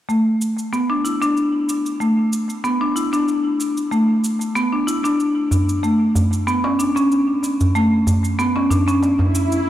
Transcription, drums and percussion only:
0.10 cabasa
0.41 cabasa
0.59 cabasa
0.73 cabasa
1.05 cabasa
1.22 cabasa
1.37 cabasa
1.69 cabasa
1.86 cabasa
2.01 cabasa
2.33 cabasa
2.50 cabasa
2.65 cabasa
2.96 cabasa
3.13 cabasa
3.28 cabasa
3.60 cabasa
3.77 cabasa
3.92 cabasa
4.24 cabasa
4.41 cabasa
4.56 cabasa
4.88 cabasa
5.05 cabasa
5.20 cabasa
5.51 darbuka ka, darbuka dum, cabasa
5.69 cabasa
5.84 cabasa
6.15 darbuka dum, cabasa
6.33 cabasa
6.48 cabasa
6.64 darbuka tek
6.80 darbuka ka, cabasa
6.96 darbuka ka, cabasa
7.12 cabasa
7.43 darbuka ka, cabasa
7.61 darbuka dum, cabasa
7.75 cabasa
8.07 darbuka ka, darbuka dum, cabasa
8.24 cabasa
8.39 cabasa
8.56 darbuka tek
8.71 darbuka dum, cabasa
8.88 cabasa
9.03 darbuka tek, cabasa
9.19 darbuka tek, darbuka dum
9.35 cabasa
9.52 cabasa

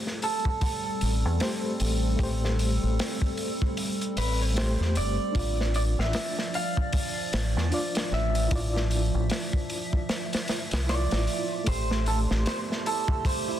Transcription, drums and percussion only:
0.07 snare
0.22 open hi-hat
0.45 kick
0.61 kick, open hi-hat
1.01 open hi-hat
1.40 snare, open hi-hat
1.80 open hi-hat
2.19 kick, open hi-hat
2.45 snare
2.59 open hi-hat
2.99 snare, open hi-hat
3.22 kick
3.37 open hi-hat
3.62 kick
3.77 open hi-hat
4.01 closed hi-hat
4.17 open hi-hat
4.57 snare, open hi-hat
4.82 snare
4.95 open hi-hat
5.35 kick, open hi-hat
5.61 snare
5.74 open hi-hat
6.00 snare
6.13 snare, open hi-hat
6.39 snare
6.54 open hi-hat
6.77 kick
6.93 kick, open hi-hat
7.33 snare, open hi-hat
7.58 snare
7.72 open hi-hat
7.95 snare, open hi-hat
8.13 snare
8.35 open hi-hat
8.51 kick, open hi-hat
8.76 snare
8.91 open hi-hat
9.30 snare, open hi-hat
9.53 kick
9.70 open hi-hat
9.93 kick
10.09 snare, open hi-hat
10.33 snare, open hi-hat
10.48 snare, open hi-hat
10.71 snare, open hi-hat
10.89 snare, open hi-hat
11.11 snare, open hi-hat
11.27 open hi-hat
11.66 kick, open hi-hat
11.91 snare
12.06 open hi-hat
12.31 snare
12.46 snare, open hi-hat
12.72 snare
12.86 open hi-hat
13.08 kick
13.25 kick, open hi-hat

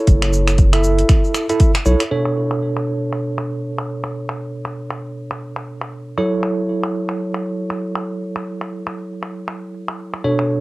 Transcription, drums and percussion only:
0.07 kick, closed hi-hat, shaker
0.22 finger snap, shaker
0.33 shaker
0.47 finger snap, closed hi-hat, shaker
0.58 kick, closed hi-hat, shaker
0.73 finger snap, closed hi-hat, shaker
0.84 shaker
0.98 closed hi-hat, shaker
1.09 finger snap, kick, closed hi-hat, shaker
1.24 shaker
1.34 finger snap, shaker
1.49 closed hi-hat, shaker
1.60 kick, closed hi-hat, shaker
1.75 finger snap, closed hi-hat, shaker
1.86 shaker
2.00 finger snap, closed hi-hat, shaker
2.11 crash
2.25 finger snap, shaker
2.36 shaker
2.51 finger snap, shaker
2.62 shaker
2.77 finger snap, shaker
2.87 shaker
3.02 shaker
3.13 finger snap, shaker
3.28 shaker
3.38 finger snap, shaker
3.53 shaker
3.64 shaker
3.79 finger snap, shaker
3.89 shaker
4.04 finger snap, shaker
4.15 shaker
4.29 finger snap, shaker
4.40 shaker
4.55 shaker
4.65 finger snap, shaker
4.80 shaker
4.91 finger snap, shaker
5.06 shaker
5.16 shaker
5.31 finger snap, shaker
5.42 shaker
5.56 finger snap, shaker
5.67 shaker
5.81 finger snap, shaker
5.92 shaker
6.07 shaker
6.18 finger snap
6.33 shaker
6.43 finger snap, shaker
6.58 shaker
6.69 shaker
6.83 finger snap, shaker
6.94 shaker
7.09 finger snap, shaker
7.20 shaker
7.34 finger snap, shaker
7.45 shaker
7.60 shaker
7.70 finger snap, shaker
7.85 shaker
7.95 finger snap, shaker
8.11 shaker
8.21 shaker
8.36 finger snap, shaker
8.47 shaker
8.61 finger snap, shaker
8.72 shaker
8.87 finger snap, shaker
8.98 shaker
9.12 shaker
9.23 finger snap, shaker
9.38 shaker
9.48 finger snap, shaker
9.63 shaker
9.74 shaker
9.88 finger snap, shaker
9.99 shaker
10.14 finger snap, shaker
10.39 finger snap, shaker
10.50 shaker

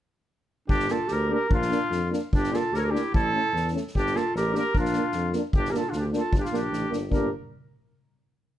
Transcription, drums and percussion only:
0.69 kick
0.80 snare
0.88 snare
1.08 snare
1.51 kick
1.62 snare
1.72 snare
1.92 snare
2.13 snare
2.33 kick
2.44 snare
2.54 snare
2.74 snare
2.96 snare
3.14 kick
3.56 snare
3.68 snare
3.77 snare
3.88 snare
3.95 kick
4.07 snare
4.16 snare
4.36 snare
4.55 snare
4.75 kick
4.85 snare
4.93 snare
5.12 snare
5.33 snare
5.53 kick
5.65 snare
5.74 snare
5.93 snare
6.13 snare
6.33 kick
6.45 snare
6.54 snare
6.73 snare
6.93 snare
7.12 kick

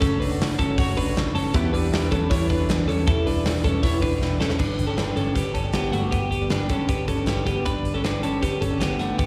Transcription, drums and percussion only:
0.02 kick, hi-hat pedal, open hi-hat
0.22 hi-hat pedal, open hi-hat
0.41 snare, hi-hat pedal, open hi-hat
0.59 kick, hi-hat pedal, open hi-hat
0.78 kick, snare, hi-hat pedal, open hi-hat
0.97 kick, hi-hat pedal, open hi-hat
1.16 snare, hi-hat pedal, open hi-hat
1.35 hi-hat pedal, open hi-hat
1.54 kick, hi-hat pedal, open hi-hat
1.74 hi-hat pedal, open hi-hat
1.93 snare, hi-hat pedal, open hi-hat
2.12 kick, hi-hat pedal, open hi-hat
2.31 kick, snare, hi-hat pedal, open hi-hat
2.50 kick, hi-hat pedal, open hi-hat
2.69 snare, hi-hat pedal, open hi-hat
2.89 hi-hat pedal, open hi-hat
3.08 kick, hi-hat pedal, open hi-hat
3.27 hi-hat pedal, open hi-hat
3.45 snare, hi-hat pedal, open hi-hat
3.64 kick, hi-hat pedal, open hi-hat
3.83 kick, snare, hi-hat pedal, open hi-hat
4.02 kick, hi-hat pedal, open hi-hat
4.22 snare
4.41 snare
4.50 snare
4.59 kick, crash
4.79 closed hi-hat
4.97 snare, closed hi-hat
5.17 closed hi-hat
5.36 kick, snare, closed hi-hat
5.55 kick, closed hi-hat
5.73 snare, closed hi-hat
5.93 closed hi-hat
6.12 kick, closed hi-hat
6.32 closed hi-hat
6.50 snare, closed hi-hat
6.69 kick, closed hi-hat
6.89 kick, closed hi-hat
7.08 kick, closed hi-hat
7.26 snare, closed hi-hat
7.47 kick, closed hi-hat
7.65 kick, closed hi-hat
7.85 closed hi-hat
8.04 snare, closed hi-hat
8.23 closed hi-hat
8.43 kick, snare, closed hi-hat
8.62 kick, closed hi-hat
8.81 snare, closed hi-hat
8.99 closed hi-hat
9.19 kick, closed hi-hat

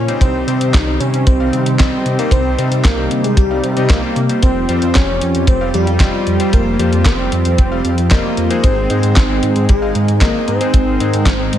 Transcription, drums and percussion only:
0.08 closed hi-hat
0.21 kick, closed hi-hat
0.48 closed hi-hat
0.61 closed hi-hat
0.74 kick, snare, clap, closed hi-hat
1.01 closed hi-hat
1.14 closed hi-hat
1.27 kick, closed hi-hat
1.53 closed hi-hat
1.66 closed hi-hat
1.80 kick, snare, clap, closed hi-hat
2.06 closed hi-hat
2.19 closed hi-hat
2.31 kick, closed hi-hat
2.59 closed hi-hat
2.72 closed hi-hat
2.84 kick, snare, clap, closed hi-hat
3.11 closed hi-hat
3.24 closed hi-hat
3.37 kick, closed hi-hat
3.64 closed hi-hat
3.77 closed hi-hat
3.90 kick, snare, clap, closed hi-hat
4.16 closed hi-hat
4.29 closed hi-hat
4.43 kick, closed hi-hat
4.69 closed hi-hat
4.82 closed hi-hat
4.95 kick, snare, clap, closed hi-hat
5.21 closed hi-hat
5.35 closed hi-hat
5.47 kick, closed hi-hat
5.74 closed hi-hat
5.87 closed hi-hat
6.00 kick, snare, clap, closed hi-hat
6.27 closed hi-hat
6.40 closed hi-hat
6.53 kick, closed hi-hat
6.79 closed hi-hat
6.93 closed hi-hat
7.05 kick, snare, clap, closed hi-hat
7.32 closed hi-hat
7.45 closed hi-hat
7.58 kick, closed hi-hat
7.85 closed hi-hat
7.98 closed hi-hat
8.11 kick, snare, clap, closed hi-hat
8.37 closed hi-hat
8.51 closed hi-hat
8.64 kick, closed hi-hat
8.90 closed hi-hat
9.03 closed hi-hat
9.16 kick, snare, clap, closed hi-hat
9.43 closed hi-hat
9.56 closed hi-hat
9.69 kick, closed hi-hat
9.95 closed hi-hat
10.08 closed hi-hat
10.21 kick, snare, clap, closed hi-hat
10.48 closed hi-hat
10.61 closed hi-hat
10.74 kick, closed hi-hat
11.00 closed hi-hat
11.13 closed hi-hat
11.26 kick, snare, clap, closed hi-hat
11.53 closed hi-hat

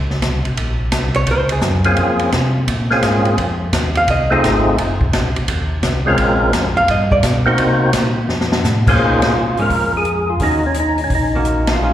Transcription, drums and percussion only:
0.11 snare
0.22 kick, snare, hi-hat pedal, ride
0.45 ride
0.57 kick, ride
0.92 kick, snare, hi-hat pedal, ride
1.14 ride
1.27 kick, ride
1.49 ride
1.61 kick, snare, hi-hat pedal
1.84 ride
1.97 kick, ride
2.19 ride
2.32 kick, snare, hi-hat pedal, ride
2.68 kick, ride
2.91 snare
3.03 kick, snare, hi-hat pedal, ride
3.25 ride
3.38 kick, ride
3.73 kick, snare, hi-hat pedal, ride
3.95 ride
4.08 kick, ride
4.43 kick, snare, hi-hat pedal, ride
4.78 kick, ride
5.01 kick
5.13 kick, snare, hi-hat pedal, ride
5.36 ride
5.48 kick, ride
5.83 kick, snare, hi-hat pedal, ride
6.18 kick, ride
6.53 kick, snare, hi-hat pedal, ride
6.88 kick, ride
7.11 kick
7.23 kick, snare, hi-hat pedal, ride
7.58 kick, ride
7.93 kick, snare, hi-hat pedal, ride
8.29 snare
8.41 snare
8.52 snare
8.64 snare, hi-hat pedal
8.87 kick, crash
9.00 kick
9.22 snare, ride
9.57 open hi-hat
9.70 kick, open hi-hat
10.05 closed hi-hat
10.40 kick, open hi-hat
10.74 closed hi-hat
10.98 open hi-hat
11.10 kick, open hi-hat
11.45 closed hi-hat
11.67 snare, ride

